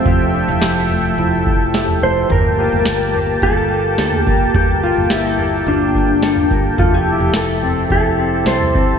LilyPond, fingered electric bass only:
\new Staff \with { instrumentName = "Fingered electric bass" } { \clef bass \time 4/4 \key f \major \tempo 4 = 107 f,,8. f,,16 f,,4 f,,4. f,,8 | g,,8. g,,16 g,,4 g,,4 d,8 f,,8 | g,,8. g,,16 g,,4 g,,4. g,,8 | f,,8. f,,16 f,,4 f,,4 c,8 g,,8 | }